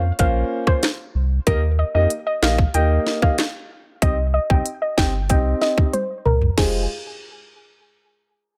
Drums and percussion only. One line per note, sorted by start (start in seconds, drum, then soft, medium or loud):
0.19 kick medium
0.19 closed hi-hat medium
0.67 kick medium
0.67 cross-stick medium
0.83 snare loud
0.83 clap medium
0.83 closed hi-hat medium
1.47 kick loud
1.47 closed hi-hat medium
2.10 closed hi-hat medium
2.43 snare loud
2.43 clap medium
2.58 kick loud
2.74 closed hi-hat medium
3.06 snare medium
3.22 kick medium
3.22 cross-stick medium
3.38 snare loud
3.38 clap medium
3.38 closed hi-hat medium
4.02 kick loud
4.02 closed hi-hat medium
4.50 kick loud
4.66 closed hi-hat medium
4.98 kick loud
4.98 snare loud
4.98 clap medium
5.29 kick medium
5.29 closed hi-hat medium
5.61 snare medium
5.78 kick loud
5.93 closed hi-hat medium
5.93 high tom medium
6.25 mid tom medium
6.42 floor tom loud
6.58 kick loud
6.58 snare loud
6.58 crash medium